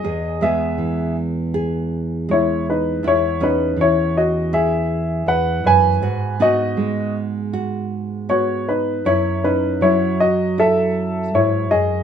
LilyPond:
<<
  \new Staff \with { instrumentName = "Upright piano" } { \time 4/4 \key e \major \tempo 4 = 80 <gis' dis''>8 <gis' e''>4 r4. <e' cis''>8 <dis' b'>8 | <e' cis''>8 <dis' b'>8 <e' cis''>8 <fis' dis''>8 <gis' e''>4 <b' fis''>8 <b' gis''>8~ | <b' gis''>8 <fis' dis''>4 r4. <fis' cis''>8 <dis' b'>8 | <e' cis''>8 <dis' b'>8 <e' cis''>8 <fis' dis''>8 <a' e''>4 <e' cis''>8 <gis' dis''>8 | }
  \new Staff \with { instrumentName = "Nylon-string guitar" } { \time 4/4 \key e \major << { gis'8 <gis b gis'>4. gis'4 gis4 | e'8 <b cis'>4. e'2 | fis'8 <b dis' fis'>4. fis'4 b4 | e'8 cis'4. e'2 | } \\ { e,4 e2. | e,4 e2 e,8 fis,8 | gis,4 gis2. | fis,4 fis2 gis,8 fis,8 | } >> }
>>